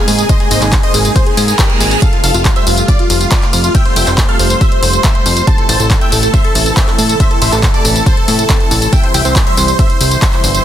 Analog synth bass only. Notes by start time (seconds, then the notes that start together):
0.08 G#2
0.51 G#1
0.62 G#1
0.94 G#1
1.37 G#2
1.80 G#1
2.24 F1
2.34 F1
2.67 F1
3.10 F1
3.53 F2
3.96 F1
4.07 F1
4.39 F1
4.82 F1
5.26 F2
5.69 A1
5.80 A1
6.12 A1
6.55 A1
6.98 A2
7.42 A1
7.52 A1
7.85 A1
8.28 A2
8.71 A1
9.14 C2
9.25 C2
9.57 C2
10.01 C2
10.44 G1